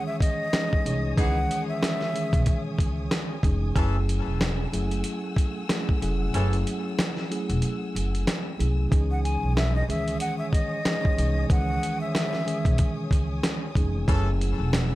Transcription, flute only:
0.06 0.19 E5 medium
0.20 1.13 D#5 medium
1.19 1.66 F#5 loud
1.68 2.61 E5 medium
9.11 9.23 F#5 medium
9.23 9.53 G#5 medium
9.56 9.73 E5 medium
9.75 9.87 D#5 medium
9.89 10.18 E5 medium
10.20 10.38 F#5 loud
10.38 10.51 E5 medium
10.52 11.45 D#5 medium
11.51 11.98 F#5 loud
12.01 12.94 E5 medium

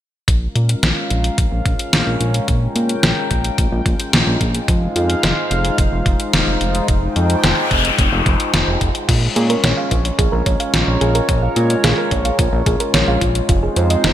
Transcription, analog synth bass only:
0.28 0.48 A#1 medium
0.56 0.75 A#2 medium
0.83 0.93 A#1 medium
1.10 1.30 A#1 medium
1.38 1.48 A#1 medium
1.52 1.62 A#1 medium
1.66 1.75 A#1 medium
1.93 2.03 A#1 medium
2.07 2.17 A#1 medium
2.21 2.40 A#1 medium
2.48 2.68 A#1 medium
2.76 2.95 A#2 medium
3.03 3.13 A#1 medium
3.31 3.50 A#1 medium
3.58 3.68 A#1 medium
3.72 3.82 A#1 loud
3.86 3.96 A#1 medium
4.13 4.23 A#1 medium
4.27 4.37 A#1 medium
4.41 4.61 A#1 medium
4.68 4.88 F1 loud
4.96 5.16 F2 medium
5.23 5.33 F1 medium
5.51 5.71 F1 medium
5.78 5.88 F1 medium
5.92 6.02 F1 medium
6.06 6.16 F1 medium
6.33 6.43 F1 medium
6.47 6.57 F1 medium
6.61 6.81 F1 medium
6.88 7.08 F1 medium
7.16 7.36 F2 medium
7.44 7.53 F1 loud
7.71 7.91 F1 medium
7.99 8.08 F1 medium
8.12 8.22 F1 loud
8.26 8.36 F1 medium
8.54 8.64 F1 loud
8.67 8.77 F1 medium
8.81 8.91 F1 loud
9.09 9.28 A#1 loud
9.36 9.56 A#2 medium
9.64 9.74 A#1 medium
9.91 10.11 A#1 medium
10.19 10.29 A#1 medium
10.33 10.42 A#1 loud
10.46 10.56 A#1 medium
10.74 10.84 A#1 medium
10.88 10.97 A#1 medium
11.01 11.21 A#1 medium
11.29 11.49 A#1 loud
11.56 11.76 A#2 medium
11.84 11.94 A#1 loud
12.11 12.31 A#1 medium
12.39 12.49 A#1 medium
12.53 12.63 A#1 loud
12.66 12.76 A#1 medium
12.94 13.04 A#1 medium
13.08 13.18 A#1 medium
13.21 13.41 A#1 medium
13.49 13.69 F1 loud
13.76 13.96 F2 medium
14.04 14.13 F1 loud

